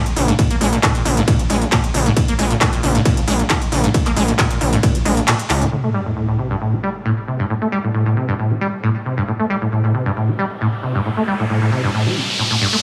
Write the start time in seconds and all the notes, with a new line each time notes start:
0.06 closed hi-hat
0.16 A#1 C#3, open hi-hat
0.28 G#2, closed hi-hat
0.39 A#2, kick, closed hi-hat, ride
0.50 A#3, closed hi-hat
0.61 A#1 G#3, open hi-hat
0.73 A#2, closed hi-hat
0.83 A#2, kick, clap, closed hi-hat, ride
0.95 A#2, closed hi-hat
1.05 A#1 C#3, open hi-hat
1.17 G#2, closed hi-hat
1.28 A#2, kick, closed hi-hat, ride
1.39 G#3, closed hi-hat
1.50 A#1 G#3, open hi-hat
1.62 closed hi-hat
1.72 A#2, kick, clap, closed hi-hat, ride
1.84 closed hi-hat
1.94 A#1 C#3, open hi-hat
2.06 G#2, closed hi-hat
2.17 A#2, kick, closed hi-hat, ride
2.28 A#3, closed hi-hat
2.39 A#1 G#3, open hi-hat
2.51 A#2, closed hi-hat
2.61 A#2, kick, clap, closed hi-hat, ride
2.73 A#2, closed hi-hat
2.83 A#1 C#3, open hi-hat
2.95 G#2, closed hi-hat
3.05 A#2, kick, closed hi-hat, ride
3.17 G#3, closed hi-hat
3.28 A#1 G#3, open hi-hat
3.39 closed hi-hat
3.50 A#2, kick, clap, closed hi-hat, ride
3.62 closed hi-hat
3.72 A#1 C#3, open hi-hat
3.84 G#2, closed hi-hat
3.94 A#2, kick, closed hi-hat, ride
4.06 A#3, clap, closed hi-hat
4.16 A#1 G#3, open hi-hat
4.28 A#2, closed hi-hat
4.39 A#2, kick, clap, closed hi-hat, ride
4.50 A#2, closed hi-hat
4.61 A#1 C#3, open hi-hat
4.73 G#2, closed hi-hat
4.83 A#2, kick, closed hi-hat, ride
4.95 G#3, closed hi-hat
5.05 A#1 G#3, open hi-hat
5.17 closed hi-hat
5.28 A#2, clap, closed hi-hat, ride
5.39 closed hi-hat
5.50 C#2 C#3, clap, open hi-hat
5.62 G#2, closed hi-hat
5.72 A2, closed hi-hat, sub drop
5.84 A3, closed hi-hat
5.94 G3, closed hi-hat
6.06 A2, closed hi-hat
6.16 A2, closed hi-hat
6.28 A2, closed hi-hat
6.39 C3, closed hi-hat
6.50 G2, closed hi-hat
6.61 A2, closed hi-hat
6.73 G3, closed hi-hat
6.83 G3, closed hi-hat
6.95 closed hi-hat
7.05 A2, closed hi-hat
7.17 closed hi-hat
7.28 C3, closed hi-hat
7.39 G2, closed hi-hat
7.50 A2, closed hi-hat
7.62 A3, closed hi-hat
7.72 G3, closed hi-hat
7.84 A2, closed hi-hat
7.94 A2, closed hi-hat
8.06 A2, closed hi-hat
8.17 C3, closed hi-hat
8.28 G2, closed hi-hat
8.39 A2, closed hi-hat
8.51 G3, closed hi-hat
8.61 G3, closed hi-hat
8.73 closed hi-hat
8.83 A2, closed hi-hat
8.95 closed hi-hat
9.05 C3, closed hi-hat
9.17 G2, closed hi-hat
9.28 A2, closed hi-hat, riser
9.39 A3, closed hi-hat
9.50 G3, closed hi-hat
9.62 A2, closed hi-hat
9.72 A2, closed hi-hat
9.84 A2, closed hi-hat
9.94 C3, closed hi-hat
10.06 G2, closed hi-hat
10.16 A2, closed hi-hat
10.28 G3, closed hi-hat
10.39 G3, closed hi-hat
10.51 closed hi-hat
10.61 A2, closed hi-hat
10.73 closed hi-hat
10.83 C3, closed hi-hat
10.95 G2, closed hi-hat
11.05 A2, closed hi-hat
11.17 A3, closed hi-hat
11.28 G3, closed hi-hat
11.39 A2, closed hi-hat
11.50 A2, closed hi-hat
11.62 A2, closed hi-hat
11.72 C3, closed hi-hat
11.84 G2, closed hi-hat
11.94 A2, closed hi-hat
12.06 G3, closed hi-hat
12.16 A2, closed hi-hat
12.28 closed hi-hat
12.39 A2, closed hi-hat
12.51 A2, closed hi-hat
12.61 G2, closed hi-hat
12.73 A3, closed hi-hat